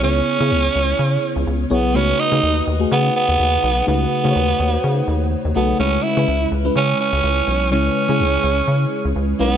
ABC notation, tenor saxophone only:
X:1
M:4/4
L:1/8
Q:"Swing 16ths" 1/4=125
K:C#m
V:1 name="Tenor saxophone"
C6 z B, | C D2 z B, B,3 | B,6 z B, | C E2 z C C3 |
C6 z B, |]